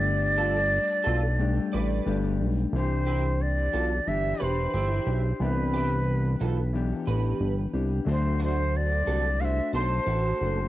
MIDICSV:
0, 0, Header, 1, 5, 480
1, 0, Start_track
1, 0, Key_signature, 0, "major"
1, 0, Tempo, 667408
1, 43, Time_signature, 4, 2, 24, 8
1, 7682, End_track
2, 0, Start_track
2, 0, Title_t, "Shakuhachi"
2, 0, Program_c, 0, 77
2, 0, Note_on_c, 0, 74, 112
2, 1490, Note_off_c, 0, 74, 0
2, 1979, Note_on_c, 0, 72, 86
2, 2458, Note_on_c, 0, 74, 104
2, 2468, Note_off_c, 0, 72, 0
2, 2934, Note_on_c, 0, 76, 97
2, 2945, Note_off_c, 0, 74, 0
2, 3186, Note_on_c, 0, 72, 93
2, 3197, Note_off_c, 0, 76, 0
2, 3899, Note_on_c, 0, 71, 85
2, 3910, Note_off_c, 0, 72, 0
2, 4851, Note_off_c, 0, 71, 0
2, 5833, Note_on_c, 0, 72, 88
2, 6043, Note_off_c, 0, 72, 0
2, 6068, Note_on_c, 0, 72, 92
2, 6305, Note_on_c, 0, 74, 101
2, 6316, Note_off_c, 0, 72, 0
2, 6764, Note_on_c, 0, 77, 90
2, 6775, Note_off_c, 0, 74, 0
2, 6792, Note_on_c, 0, 76, 97
2, 6799, Note_off_c, 0, 77, 0
2, 7004, Note_off_c, 0, 76, 0
2, 7007, Note_on_c, 0, 72, 95
2, 7682, Note_off_c, 0, 72, 0
2, 7682, End_track
3, 0, Start_track
3, 0, Title_t, "Clean electric guitar"
3, 0, Program_c, 1, 27
3, 271, Note_on_c, 1, 69, 81
3, 274, Note_on_c, 1, 65, 63
3, 391, Note_off_c, 1, 69, 0
3, 392, Note_off_c, 1, 65, 0
3, 747, Note_on_c, 1, 69, 86
3, 752, Note_on_c, 1, 65, 71
3, 868, Note_off_c, 1, 69, 0
3, 871, Note_off_c, 1, 65, 0
3, 1243, Note_on_c, 1, 74, 73
3, 1251, Note_on_c, 1, 71, 57
3, 1581, Note_off_c, 1, 74, 0
3, 1585, Note_off_c, 1, 71, 0
3, 2206, Note_on_c, 1, 67, 73
3, 2211, Note_on_c, 1, 64, 51
3, 2318, Note_off_c, 1, 67, 0
3, 2321, Note_off_c, 1, 64, 0
3, 2684, Note_on_c, 1, 65, 62
3, 2686, Note_on_c, 1, 69, 71
3, 2797, Note_off_c, 1, 69, 0
3, 2798, Note_off_c, 1, 65, 0
3, 3163, Note_on_c, 1, 71, 63
3, 3167, Note_on_c, 1, 67, 52
3, 3391, Note_off_c, 1, 71, 0
3, 3393, Note_off_c, 1, 67, 0
3, 3405, Note_on_c, 1, 67, 61
3, 3413, Note_on_c, 1, 64, 50
3, 3743, Note_off_c, 1, 67, 0
3, 3745, Note_off_c, 1, 64, 0
3, 4126, Note_on_c, 1, 67, 77
3, 4140, Note_on_c, 1, 64, 58
3, 4239, Note_off_c, 1, 67, 0
3, 4246, Note_off_c, 1, 64, 0
3, 4610, Note_on_c, 1, 65, 59
3, 4612, Note_on_c, 1, 69, 75
3, 4721, Note_off_c, 1, 65, 0
3, 4721, Note_off_c, 1, 69, 0
3, 5087, Note_on_c, 1, 71, 68
3, 5092, Note_on_c, 1, 67, 53
3, 5424, Note_off_c, 1, 71, 0
3, 5426, Note_off_c, 1, 67, 0
3, 6039, Note_on_c, 1, 66, 68
3, 6046, Note_on_c, 1, 62, 59
3, 6155, Note_off_c, 1, 66, 0
3, 6159, Note_off_c, 1, 62, 0
3, 6526, Note_on_c, 1, 69, 93
3, 6531, Note_on_c, 1, 66, 68
3, 6639, Note_off_c, 1, 69, 0
3, 6642, Note_off_c, 1, 66, 0
3, 7008, Note_on_c, 1, 72, 65
3, 7011, Note_on_c, 1, 69, 51
3, 7228, Note_off_c, 1, 69, 0
3, 7234, Note_off_c, 1, 72, 0
3, 7237, Note_on_c, 1, 69, 68
3, 7243, Note_on_c, 1, 66, 59
3, 7579, Note_off_c, 1, 69, 0
3, 7582, Note_off_c, 1, 66, 0
3, 7682, End_track
4, 0, Start_track
4, 0, Title_t, "Clean electric guitar"
4, 0, Program_c, 2, 27
4, 0, Note_on_c, 2, 55, 53
4, 0, Note_on_c, 2, 57, 60
4, 0, Note_on_c, 2, 62, 62
4, 0, Note_on_c, 2, 67, 62
4, 991, Note_off_c, 2, 55, 0
4, 992, Note_off_c, 2, 57, 0
4, 994, Note_on_c, 2, 55, 65
4, 1001, Note_on_c, 2, 57, 68
4, 1002, Note_off_c, 2, 62, 0
4, 1005, Note_off_c, 2, 67, 0
4, 1005, Note_on_c, 2, 62, 79
4, 1008, Note_on_c, 2, 67, 68
4, 1475, Note_off_c, 2, 55, 0
4, 1476, Note_off_c, 2, 57, 0
4, 1478, Note_on_c, 2, 55, 69
4, 1484, Note_off_c, 2, 62, 0
4, 1484, Note_on_c, 2, 57, 73
4, 1487, Note_on_c, 2, 62, 77
4, 1489, Note_off_c, 2, 67, 0
4, 1492, Note_on_c, 2, 67, 72
4, 1962, Note_off_c, 2, 55, 0
4, 1963, Note_off_c, 2, 57, 0
4, 1964, Note_on_c, 2, 52, 72
4, 1979, Note_off_c, 2, 62, 0
4, 1982, Note_off_c, 2, 67, 0
4, 1982, Note_on_c, 2, 62, 75
4, 1985, Note_on_c, 2, 67, 88
4, 2913, Note_off_c, 2, 52, 0
4, 2922, Note_on_c, 2, 52, 50
4, 2934, Note_off_c, 2, 67, 0
4, 2935, Note_off_c, 2, 62, 0
4, 2938, Note_on_c, 2, 62, 68
4, 2941, Note_on_c, 2, 67, 63
4, 3638, Note_off_c, 2, 67, 0
4, 3642, Note_off_c, 2, 52, 0
4, 3646, Note_on_c, 2, 67, 50
4, 3650, Note_off_c, 2, 62, 0
4, 3653, Note_on_c, 2, 62, 44
4, 3885, Note_off_c, 2, 67, 0
4, 3888, Note_off_c, 2, 62, 0
4, 3888, Note_on_c, 2, 52, 70
4, 3892, Note_on_c, 2, 59, 79
4, 3900, Note_on_c, 2, 62, 82
4, 3907, Note_on_c, 2, 67, 78
4, 4832, Note_off_c, 2, 52, 0
4, 4840, Note_on_c, 2, 52, 65
4, 4841, Note_off_c, 2, 59, 0
4, 4849, Note_off_c, 2, 67, 0
4, 4850, Note_on_c, 2, 59, 60
4, 4852, Note_off_c, 2, 62, 0
4, 4855, Note_on_c, 2, 62, 69
4, 4857, Note_on_c, 2, 67, 69
4, 5555, Note_off_c, 2, 67, 0
4, 5562, Note_off_c, 2, 52, 0
4, 5564, Note_on_c, 2, 67, 57
4, 5567, Note_off_c, 2, 59, 0
4, 5567, Note_off_c, 2, 62, 0
4, 5570, Note_on_c, 2, 62, 55
4, 5578, Note_on_c, 2, 59, 46
4, 5787, Note_on_c, 2, 50, 78
4, 5795, Note_on_c, 2, 54, 74
4, 5798, Note_off_c, 2, 59, 0
4, 5798, Note_off_c, 2, 62, 0
4, 5800, Note_on_c, 2, 57, 73
4, 5804, Note_off_c, 2, 67, 0
4, 5807, Note_on_c, 2, 62, 81
4, 5811, Note_on_c, 2, 66, 80
4, 5814, Note_on_c, 2, 72, 82
4, 6760, Note_off_c, 2, 54, 0
4, 6764, Note_off_c, 2, 57, 0
4, 6767, Note_off_c, 2, 62, 0
4, 6767, Note_on_c, 2, 57, 60
4, 6768, Note_off_c, 2, 66, 0
4, 6769, Note_off_c, 2, 72, 0
4, 6770, Note_on_c, 2, 62, 58
4, 6777, Note_on_c, 2, 66, 61
4, 6782, Note_on_c, 2, 72, 65
4, 6804, Note_off_c, 2, 50, 0
4, 7476, Note_off_c, 2, 72, 0
4, 7485, Note_on_c, 2, 72, 51
4, 7486, Note_off_c, 2, 66, 0
4, 7495, Note_on_c, 2, 66, 47
4, 7496, Note_off_c, 2, 62, 0
4, 7498, Note_on_c, 2, 62, 44
4, 7503, Note_off_c, 2, 57, 0
4, 7506, Note_on_c, 2, 57, 39
4, 7682, Note_off_c, 2, 57, 0
4, 7682, Note_off_c, 2, 62, 0
4, 7682, Note_off_c, 2, 66, 0
4, 7682, Note_off_c, 2, 72, 0
4, 7682, End_track
5, 0, Start_track
5, 0, Title_t, "Analog synth bass"
5, 0, Program_c, 3, 38
5, 0, Note_on_c, 3, 31, 105
5, 569, Note_off_c, 3, 31, 0
5, 765, Note_on_c, 3, 35, 95
5, 1148, Note_off_c, 3, 35, 0
5, 1252, Note_on_c, 3, 33, 84
5, 1440, Note_off_c, 3, 33, 0
5, 1485, Note_on_c, 3, 31, 90
5, 1726, Note_on_c, 3, 35, 98
5, 1737, Note_off_c, 3, 31, 0
5, 1916, Note_off_c, 3, 35, 0
5, 1963, Note_on_c, 3, 36, 111
5, 2654, Note_off_c, 3, 36, 0
5, 2690, Note_on_c, 3, 35, 86
5, 2879, Note_off_c, 3, 35, 0
5, 2929, Note_on_c, 3, 31, 84
5, 3119, Note_off_c, 3, 31, 0
5, 3174, Note_on_c, 3, 28, 79
5, 3361, Note_off_c, 3, 28, 0
5, 3410, Note_on_c, 3, 31, 94
5, 3599, Note_off_c, 3, 31, 0
5, 3644, Note_on_c, 3, 35, 89
5, 3836, Note_off_c, 3, 35, 0
5, 3884, Note_on_c, 3, 36, 112
5, 4575, Note_off_c, 3, 36, 0
5, 4608, Note_on_c, 3, 35, 78
5, 4990, Note_off_c, 3, 35, 0
5, 5087, Note_on_c, 3, 33, 86
5, 5277, Note_off_c, 3, 33, 0
5, 5326, Note_on_c, 3, 31, 91
5, 5517, Note_off_c, 3, 31, 0
5, 5564, Note_on_c, 3, 36, 86
5, 5756, Note_off_c, 3, 36, 0
5, 5800, Note_on_c, 3, 38, 107
5, 6494, Note_off_c, 3, 38, 0
5, 6526, Note_on_c, 3, 36, 96
5, 6909, Note_off_c, 3, 36, 0
5, 6999, Note_on_c, 3, 35, 87
5, 7193, Note_off_c, 3, 35, 0
5, 7239, Note_on_c, 3, 33, 91
5, 7434, Note_off_c, 3, 33, 0
5, 7489, Note_on_c, 3, 30, 101
5, 7679, Note_off_c, 3, 30, 0
5, 7682, End_track
0, 0, End_of_file